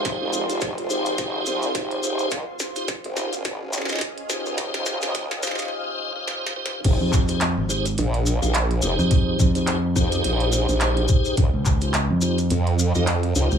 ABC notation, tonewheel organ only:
X:1
M:4/4
L:1/16
Q:"Swing 16ths" 1/4=106
K:Fm
V:1 name="Tonewheel organ"
[EGAc]3 [EGAc]2 z [EGAc]8- [EGAc]2 | z3 [EFGc] z2 [EFGc] z4 [EFGe] z2 [EFGc]2- | [EFGc]3 [EFGc]2 z [EFGc]4- [EFGc] [EFGc]3 [EFGc]2 | [EGAc]3 [EGAc] z2 [EGAc] z4 [EGAf] z2 [EGAc]2- |
[EGAc]3 [EGAc]2 z [EGAc]8- [EGAc]2 | z3 [EFGc] z2 [EFGc] z4 [EFGe] z2 [EFGc]2 |]